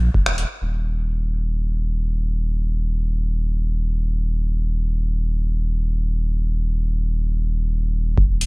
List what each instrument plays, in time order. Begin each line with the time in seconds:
0.14 sub bass D#1, kick
0.26 finger snap
0.38 open hi-hat
0.62 sub bass D#1
8.18 sub bass D#1, kick
8.41 open hi-hat